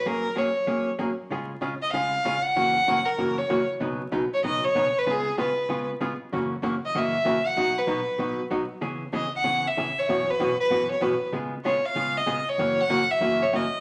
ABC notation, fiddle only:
X:1
M:4/4
L:1/16
Q:"Swing" 1/4=191
K:C#dor
V:1 name="Fiddle"
A4 c6 z6 | z6 d2 ^e6 f2- | f6 A4 c4 z2 | z6 c2 d2 c4 B2 |
G4 B6 z6 | z6 d2 e6 f2- | f2 B8 z6 | z4 d2 f4 e4 c2- |
c2 B4 B4 c2 B3 z | z4 c2 ^e4 d4 c2- | c2 f4 e4 c2 d3 z |]